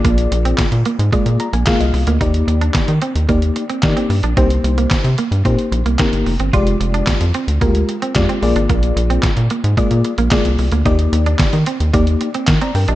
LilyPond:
<<
  \new Staff \with { instrumentName = "FM electric piano" } { \time 4/4 \key bes \mixolydian \tempo 4 = 111 << { r2 r8 bes''16 aes''16 f''16 ees''8. | r1 | r1 | r1 |
r1 | r2. r16 <d'' bes''>16 <bes' g''>16 <g' ees''>16 | } \\ { <bes f' aes' d''>4 r4 <bes f' aes' d''>8 r8 <bes f' aes' f''>8 r8 | <bes ees' g' d''>4. r8 <bes ees' g' d''>8 r8 <bes ees' g' d''>8 r8 | <bes ees' g' c''>4. r8 <bes ees' g' c''>8 r8 <bes ees' g' bes'>8 r8 | <aes f' g' d''>4. r8 <aes f' g' bes'>8 r8 <aes f' g' d''>8 <bes f' aes' d''>8~ |
<bes f' aes' d''>4 r4 <bes f' aes' d''>8 r8 <bes f' aes' d''>8 r8 | <bes ees' g' d''>4. r8 <bes ees' g' d''>8 r4. | } >> }
  \new Staff \with { instrumentName = "Clean electric guitar" } { \time 4/4 \key bes \mixolydian bes16 r8 c'16 r8 bes16 r16 aes16 r8 bes16 aes16 r8 bes16 | ees'16 r8 d'16 r8 c'16 r16 bes16 r8 c'16 r16 c'16 r16 d'16 | c'16 r8 bes16 r8 bes16 r16 c'16 r8 bes16 c'16 r8 c'16 | f'16 r8 d'16 r8 c'16 r16 bes16 r8 c'16 r16 c'16 r16 d'16 |
bes16 r8 c'16 r8 bes16 r16 aes16 r8 bes16 aes16 r8 bes16 | ees'16 r8 d'16 r8 c'16 r16 bes16 r8 c'16 r16 c'16 r16 d'16 | }
  \new Staff \with { instrumentName = "Analog synth bass" } { \clef bass \time 4/4 \key bes \mixolydian bes,,8 bes,,8 bes,16 bes,16 r16 aes,16 bes,16 bes,16 r16 bes,,16 r16 c,16 c,16 d,16 | ees,8 ees,8 ees16 ees16 r16 ees,16 ees,8 r8 ees16 r16 g,16 bes,,16 | c,8 c,8 c16 c16 r16 g,16 bes,16 r16 bes,,16 c,16 r16 g,,16 f,,16 g,,16 | f,,8 f,,8 f,16 f,16 r16 d,16 d,8 r8 f,16 r16 bes,,16 aes,,16 |
bes,,8 bes,,8 bes,16 bes,16 r16 aes,16 bes,16 bes,16 r16 bes,,16 r16 c,16 c,16 d,16 | ees,8 ees,8 ees16 ees16 r16 ees,16 ees,8 r8 ees16 r16 g,16 bes,,16 | }
  \new DrumStaff \with { instrumentName = "Drums" } \drummode { \time 4/4 <hh bd>16 hh16 hh16 hh16 <hc hh bd sn>16 hh16 hh16 hh16 <hh bd>16 hh16 hh16 hh16 <hc hh bd sn>16 hh16 hho16 hh16 | <hh bd>16 hh16 hh16 hh16 <hc hh bd sn>16 hh16 hh16 hh16 <hh bd>16 hh16 hh16 hh16 <hc hh bd sn>16 hh16 hho16 hh16 | <hh bd>16 hh16 hh16 hh16 <hc hh bd sn>16 hh16 hh16 hh16 <hh bd>16 hh16 hh16 hh16 <hc hh bd sn>16 hh16 hho16 hh16 | <hh bd>16 hh16 hh16 hh16 <hc hh bd sn>16 hh16 hh16 hh16 <hh bd>16 hh16 hh16 hh16 <hc hh bd sn>16 hh16 hho16 hh16 |
<hh bd>16 hh16 hh16 hh16 <hc hh bd sn>16 hh16 hh16 hh16 <hh bd>16 hh16 hh16 hh16 <hc hh bd sn>16 hh16 hho16 hh16 | <hh bd>16 hh16 hh16 hh16 <hc hh bd sn>16 hh16 hh16 hh16 <hh bd>16 hh16 hh16 hh16 <hc hh bd sn>16 hh16 hho16 hh16 | }
>>